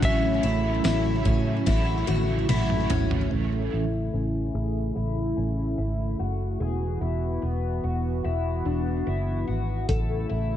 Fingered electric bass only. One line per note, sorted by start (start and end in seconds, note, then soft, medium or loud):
0.03 0.39 A1 loud
0.44 0.80 A1 loud
0.85 1.21 A1 loud
1.26 1.62 A2 loud
1.67 2.04 A1 loud
2.09 2.45 A1 loud
2.50 2.86 A1 medium
2.91 3.27 G#1 medium
3.32 3.68 A1 medium
3.74 4.10 A1 medium
4.14 4.50 A1 medium
4.55 4.91 A1 medium
4.97 5.33 A1 medium
5.38 5.74 A1 medium
5.78 6.14 G#1 medium
6.20 6.56 F#1 medium
6.61 6.97 E1 medium
7.02 7.38 E1 medium
7.43 7.79 E1 medium
7.84 8.20 E1 medium
8.25 8.61 E1 medium
8.66 9.02 E1 medium
9.07 9.43 F#1 medium
9.49 9.85 G#1 medium
9.89 10.25 A1 medium
10.31 10.57 A1 medium